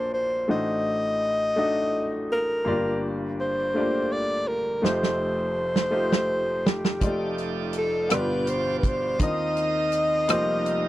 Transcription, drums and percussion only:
4.85 snare
5.03 snare
5.76 snare
6.12 snare
6.66 snare
6.85 snare
7.01 kick, closed hi-hat
7.38 closed hi-hat
7.73 closed hi-hat
8.10 cross-stick, closed hi-hat
8.47 closed hi-hat
8.83 kick, closed hi-hat
9.19 kick, closed hi-hat
9.57 closed hi-hat
9.92 closed hi-hat
10.29 cross-stick, closed hi-hat
10.66 closed hi-hat

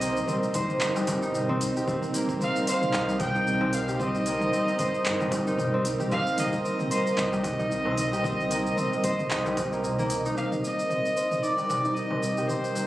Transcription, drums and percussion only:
0.01 open hi-hat, darbuka ka, shaker
0.17 shaker
0.28 mid tom, shaker
0.43 shaker
0.54 kick, open hi-hat, darbuka tek, shaker
0.69 mid tom, shaker
0.81 clap, shaker
0.96 darbuka tek, shaker
1.07 kick, mid tom, open hi-hat, darbuka tek, shaker
1.23 shaker
1.34 darbuka dum, shaker
1.49 mid tom
1.61 open hi-hat, shaker
1.76 shaker
1.88 kick, shaker
2.02 mid tom, shaker
2.14 open hi-hat, shaker
2.29 kick, shaker
2.41 mid tom, shaker
2.56 shaker
2.67 open hi-hat, shaker
2.82 mid tom, shaker
2.93 clap, shaker
3.09 darbuka ka, shaker
3.20 kick, mid tom, open hi-hat, darbuka tek, darbuka dum, shaker
3.35 shaker
3.47 shaker
3.61 mid tom, darbuka tek, darbuka dum
3.73 open hi-hat, shaker
3.88 darbuka ka, darbuka dum, shaker
4.00 kick, mid tom, shaker
4.15 shaker
4.26 open hi-hat, darbuka ka, shaker
4.41 mid tom, shaker
4.53 shaker
4.68 shaker
4.79 kick, mid tom, open hi-hat, darbuka tek, shaker
4.94 shaker
5.06 clap, shaker
5.20 mid tom, darbuka tek, shaker
5.31 kick, open hi-hat, darbuka tek, shaker
5.47 shaker
5.57 mid tom, darbuka dum, shaker
5.85 open hi-hat, shaker
6.00 mid tom, shaker
6.12 kick, shaker
6.27 shaker
6.38 mid tom, open hi-hat, shaker
6.53 kick, shaker
6.65 shaker
6.79 mid tom, shaker
6.91 open hi-hat, shaker
7.07 shaker
7.18 clap, mid tom, shaker
7.32 darbuka ka, shaker
7.44 kick, open hi-hat, darbuka tek, darbuka dum, shaker
7.59 mid tom, shaker
7.72 shaker
7.85 darbuka tek, darbuka dum
7.97 mid tom, open hi-hat, shaker
8.12 darbuka ka, darbuka dum, shaker
8.24 kick, shaker
8.40 mid tom, shaker
8.50 open hi-hat, darbuka ka, shaker
8.66 shaker
8.77 mid tom, shaker
8.92 darbuka tek, shaker
9.03 kick, open hi-hat, darbuka tek, shaker
9.19 mid tom, shaker
9.31 clap, shaker
9.45 darbuka tek, shaker
9.57 kick, mid tom, open hi-hat, darbuka tek, shaker
9.73 shaker
9.84 darbuka dum, shaker
9.99 mid tom, shaker
10.10 open hi-hat, darbuka dum, shaker
10.25 shaker
10.37 shaker
10.52 mid tom, shaker
10.64 shaker
10.79 shaker
10.90 mid tom, shaker
11.06 shaker
11.17 shaker
11.31 mid tom, shaker
11.44 shaker
11.58 darbuka ka, shaker
11.69 mid tom, darbuka tek, darbuka dum, shaker
11.85 shaker
11.97 shaker
12.10 mid tom, darbuka tek, darbuka dum
12.23 shaker
12.37 darbuka ka, darbuka dum, shaker
12.49 mid tom, shaker
12.64 shaker
12.75 darbuka ka, shaker

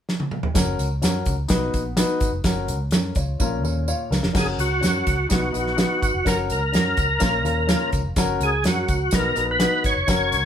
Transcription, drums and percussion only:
0.09 snare
0.20 high tom
0.31 mid tom
0.43 floor tom
0.55 kick, snare, closed hi-hat, tambourine
0.79 closed hi-hat, tambourine
1.02 snare, closed hi-hat, tambourine
1.26 kick, closed hi-hat, tambourine
1.49 kick, snare, closed hi-hat, tambourine
1.74 kick, closed hi-hat, tambourine
1.97 snare, closed hi-hat, tambourine
2.20 kick, closed hi-hat, tambourine
2.44 kick, snare, closed hi-hat, tambourine
2.68 closed hi-hat, tambourine
2.91 snare, closed hi-hat, tambourine
3.15 kick, closed hi-hat, tambourine
3.40 kick, tambourine
3.65 tambourine
3.88 tambourine
4.12 snare, tambourine
4.23 snare
4.35 kick, snare, crash, tambourine
4.59 closed hi-hat, tambourine
4.83 snare, closed hi-hat, tambourine
5.07 kick, closed hi-hat, tambourine
5.30 kick, snare, closed hi-hat, tambourine
5.54 closed hi-hat, tambourine
5.67 snare
5.78 snare, closed hi-hat, tambourine
6.02 kick, closed hi-hat, tambourine
6.26 kick, snare, closed hi-hat, tambourine
6.50 closed hi-hat, tambourine
6.74 snare, closed hi-hat, tambourine
6.97 kick, closed hi-hat, tambourine
7.20 kick, snare, closed hi-hat, tambourine
7.45 closed hi-hat, tambourine
7.69 snare, closed hi-hat, tambourine
7.93 kick, closed hi-hat, tambourine
8.16 kick, snare, closed hi-hat, tambourine
8.41 closed hi-hat, tambourine
8.64 snare, closed hi-hat, tambourine
8.88 kick, closed hi-hat, tambourine
9.11 kick, snare, closed hi-hat, tambourine
9.36 closed hi-hat, tambourine
9.60 snare, closed hi-hat, tambourine
9.84 kick, closed hi-hat, tambourine
10.08 kick, snare, closed hi-hat, tambourine
10.32 closed hi-hat, tambourine

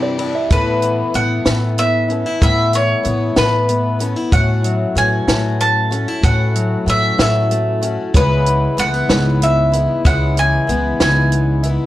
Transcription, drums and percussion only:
0.19 ride
0.50 kick, closed hi-hat
0.82 closed hi-hat
1.14 closed hi-hat
1.46 snare, closed hi-hat
1.78 closed hi-hat
2.10 closed hi-hat
2.42 kick, closed hi-hat
2.73 closed hi-hat
3.05 closed hi-hat
3.37 snare, closed hi-hat
3.69 closed hi-hat
4.00 closed hi-hat
4.32 kick, closed hi-hat
4.64 closed hi-hat
4.96 closed hi-hat
5.28 snare, closed hi-hat
5.60 closed hi-hat
5.92 closed hi-hat
6.23 kick, closed hi-hat
6.55 closed hi-hat
6.87 closed hi-hat
7.19 snare, closed hi-hat
7.51 closed hi-hat
7.82 closed hi-hat
8.14 kick, closed hi-hat
8.46 closed hi-hat
8.78 closed hi-hat
9.10 snare, closed hi-hat
9.42 closed hi-hat
9.73 closed hi-hat
10.05 kick, closed hi-hat
10.37 closed hi-hat
10.69 closed hi-hat
11.00 snare, closed hi-hat
11.32 closed hi-hat
11.64 closed hi-hat

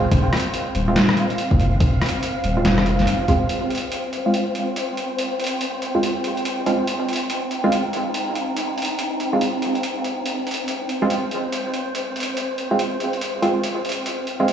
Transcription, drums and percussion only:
0.11 kick, closed hi-hat
0.33 cross-stick, closed hi-hat
0.37 closed hi-hat
0.40 closed hi-hat
0.54 closed hi-hat
0.75 closed hi-hat
0.96 snare, closed hi-hat
1.09 cross-stick
1.17 closed hi-hat
1.30 closed hi-hat
1.38 closed hi-hat
1.51 kick
1.59 closed hi-hat
1.80 kick, closed hi-hat
2.02 cross-stick, closed hi-hat
2.06 closed hi-hat
2.09 closed hi-hat
2.23 closed hi-hat
2.44 closed hi-hat
2.65 snare, closed hi-hat
2.78 cross-stick
2.86 closed hi-hat
2.99 snare, closed hi-hat
3.07 closed hi-hat
3.28 kick, closed hi-hat
3.49 closed hi-hat
3.70 closed hi-hat
3.75 closed hi-hat
3.78 closed hi-hat
3.92 closed hi-hat
4.13 closed hi-hat
4.34 closed hi-hat
4.55 closed hi-hat
4.76 closed hi-hat
4.97 closed hi-hat
5.18 closed hi-hat
5.40 closed hi-hat
5.44 closed hi-hat
5.47 closed hi-hat
5.61 closed hi-hat
5.82 closed hi-hat
6.03 closed hi-hat
6.24 closed hi-hat
6.37 closed hi-hat
6.45 closed hi-hat
6.66 closed hi-hat
6.87 closed hi-hat
7.09 closed hi-hat
7.13 closed hi-hat
7.16 closed hi-hat
7.30 closed hi-hat
7.51 closed hi-hat
7.72 closed hi-hat
7.93 closed hi-hat
8.14 closed hi-hat
8.35 closed hi-hat
8.57 closed hi-hat
8.78 closed hi-hat
8.82 closed hi-hat
8.85 closed hi-hat
8.99 closed hi-hat
9.20 closed hi-hat
9.41 closed hi-hat
9.62 closed hi-hat
9.75 closed hi-hat
9.83 closed hi-hat
10.04 closed hi-hat
10.26 closed hi-hat
10.47 closed hi-hat
10.51 closed hi-hat
10.54 closed hi-hat
10.68 closed hi-hat
10.89 closed hi-hat
11.10 closed hi-hat
11.31 closed hi-hat
11.52 closed hi-hat
11.74 closed hi-hat
11.95 closed hi-hat
12.16 closed hi-hat
12.20 closed hi-hat
12.23 closed hi-hat
12.37 closed hi-hat
12.58 closed hi-hat
12.79 closed hi-hat
13.00 closed hi-hat
13.13 closed hi-hat
13.21 closed hi-hat
13.43 closed hi-hat
13.64 closed hi-hat
13.85 closed hi-hat
13.89 closed hi-hat
13.92 closed hi-hat
14.06 closed hi-hat
14.27 closed hi-hat
14.48 closed hi-hat

